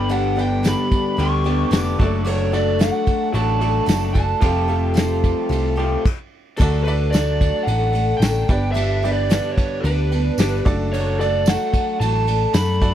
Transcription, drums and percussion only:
0.11 ride loud
0.38 snare soft
0.38 ride medium
0.65 snare loud
0.65 ride loud
0.65 tambourine loud
0.92 kick medium
0.92 ride medium
1.19 ride loud
1.45 ride medium
1.72 snare loud
1.72 ride loud
1.72 tambourine medium
2.00 kick loud
2.00 ride medium
2.26 crash loud
2.53 snare soft
2.53 ride medium
2.80 snare loud
2.80 ride loud
2.80 tambourine medium
3.06 kick medium
3.06 ride medium
3.34 ride loud
3.61 ride medium
3.89 snare loud
3.89 ride loud
3.89 tambourine medium
4.15 kick medium
4.15 ride medium
4.42 kick loud
4.42 ride loud
4.69 ride medium
4.97 snare loud
4.97 ride medium
4.97 tambourine loud
5.24 kick medium
5.24 ride medium
5.52 ride loud
5.79 ride medium
6.05 kick loud
6.05 crash loud
6.60 kick loud
6.60 ride loud
6.88 ride medium
7.14 snare loud
7.14 ride loud
7.14 tambourine loud
7.41 kick medium
7.41 ride medium
7.68 ride loud
7.95 ride medium
8.22 snare loud
8.22 ride loud
8.22 tambourine loud
8.49 kick loud
8.49 ride medium
8.76 ride loud
9.05 snare soft
9.05 ride medium
9.31 snare loud
9.31 ride loud
9.31 tambourine loud
9.58 kick medium
9.58 ride medium
9.85 ride loud
10.12 ride medium
10.38 snare loud
10.38 ride loud
10.38 tambourine loud
10.66 kick loud
10.66 ride medium
10.93 crash loud
11.21 snare soft
11.21 ride medium
11.46 snare loud
11.46 ride loud
11.46 tambourine loud
11.73 kick medium
11.73 ride medium
12.01 ride loud
12.27 ride medium
12.54 snare loud
12.54 ride loud
12.54 tambourine loud
12.82 kick medium
12.82 ride medium

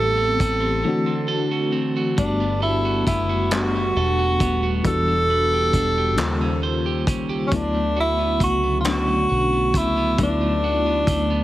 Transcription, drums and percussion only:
0.40 kick medium
0.40 closed hi-hat medium
2.18 kick loud
2.18 closed hi-hat medium
3.07 kick medium
3.07 closed hi-hat medium
3.51 clap loud
3.51 closed hi-hat medium
4.40 kick loud
4.40 closed hi-hat medium
4.85 kick loud
4.85 closed hi-hat medium
5.73 kick medium
5.73 closed hi-hat medium
6.17 clap loud
6.17 closed hi-hat medium
7.07 kick loud
7.07 closed hi-hat medium
7.52 kick loud
7.52 closed hi-hat medium
8.40 kick medium
8.40 closed hi-hat medium
8.84 clap loud
8.84 closed hi-hat medium
9.74 kick loud
9.74 closed hi-hat medium
10.18 kick loud
10.18 closed hi-hat medium
11.07 kick medium
11.07 closed hi-hat medium

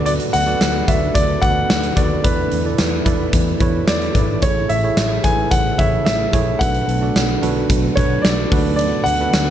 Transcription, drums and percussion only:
0.06 closed hi-hat medium
0.20 closed hi-hat medium
0.34 closed hi-hat medium
0.61 snare loud
0.61 closed hi-hat medium
0.88 kick medium
0.88 closed hi-hat medium
1.15 kick medium
1.15 closed hi-hat medium
1.42 kick medium
1.42 closed hi-hat medium
1.70 snare loud
1.70 closed hi-hat medium
1.83 closed hi-hat medium
1.97 kick medium
1.97 closed hi-hat medium
2.24 kick loud
2.24 closed hi-hat medium
2.51 closed hi-hat medium
2.78 snare loud
2.78 closed hi-hat medium
3.06 kick medium
3.06 closed hi-hat medium
3.33 kick medium
3.33 closed hi-hat medium
3.60 kick medium
3.60 closed hi-hat medium
3.88 snare loud
3.88 closed hi-hat medium
4.02 closed hi-hat medium
4.15 kick medium
4.15 closed hi-hat medium
4.42 kick loud
4.42 closed hi-hat medium
4.70 closed hi-hat medium
4.97 snare loud
4.97 closed hi-hat medium
5.24 kick medium
5.24 closed hi-hat medium
5.51 kick medium
5.51 closed hi-hat medium
5.79 kick medium
5.79 closed hi-hat medium
6.06 snare loud
6.06 closed hi-hat medium
6.33 kick medium
6.33 closed hi-hat medium
6.61 kick loud
6.61 closed hi-hat medium
6.74 closed hi-hat medium
6.89 closed hi-hat medium
7.16 snare loud
7.16 closed hi-hat medium
7.43 closed hi-hat medium
7.70 kick medium
7.70 closed hi-hat medium
7.97 kick medium
7.97 closed hi-hat medium
8.25 snare loud
8.25 closed hi-hat medium
8.52 kick loud
8.52 open hi-hat medium
8.79 closed hi-hat medium
9.06 closed hi-hat medium
9.33 snare loud
9.33 closed hi-hat medium

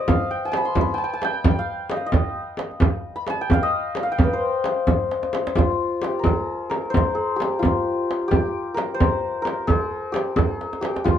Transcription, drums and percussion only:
0.08 frame drum medium
0.08 tombak dum medium
0.53 tombak tek medium
0.53 frame drum medium
0.75 frame drum medium
0.75 tombak dum medium
1.22 tombak tek medium
1.22 frame drum medium
1.34 tombak ka soft
1.44 frame drum loud
1.44 tombak dum medium
1.90 tombak tek medium
1.90 frame drum medium
2.12 frame drum medium
2.12 tombak dum loud
2.57 tombak tek medium
2.57 frame drum medium
2.71 tombak ka soft
2.80 frame drum medium
2.80 tombak dum loud
3.27 tombak tek medium
3.27 frame drum medium
3.50 frame drum medium
3.50 tombak dum medium
3.95 tombak tek medium
3.95 frame drum medium
4.09 tombak ka soft
4.18 frame drum medium
4.18 tombak dum medium
4.64 tombak tek medium
4.64 frame drum medium
4.87 frame drum medium
4.87 tombak dum medium
5.11 tombak tek medium
5.23 tombak ka medium
5.33 tombak tek medium
5.33 frame drum medium
5.47 tombak ka medium
5.55 frame drum medium
5.55 tombak dum medium
6.02 tombak tek medium
6.02 frame drum medium
6.24 frame drum medium
6.24 tombak dum medium
6.71 frame drum medium
6.85 tombak ka soft
6.94 frame drum medium
6.94 tombak dum medium
7.40 tombak tek medium
7.40 frame drum medium
7.63 frame drum medium
7.63 tombak dum medium
8.11 tombak tek medium
8.22 tombak ka soft
8.31 frame drum medium
8.31 tombak dum medium
8.77 tombak tek medium
8.77 frame drum medium
9.00 frame drum medium
9.00 tombak dum medium
9.45 tombak tek medium
9.45 frame drum medium
9.59 tombak ka soft
9.68 frame drum medium
9.68 tombak dum medium
10.14 tombak tek medium
10.14 frame drum medium
10.36 frame drum medium
10.36 tombak dum medium
10.61 tombak tek soft
10.73 tombak ka medium
10.83 tombak tek medium
10.83 frame drum medium
10.96 tombak ka medium
11.05 frame drum medium
11.05 tombak dum medium

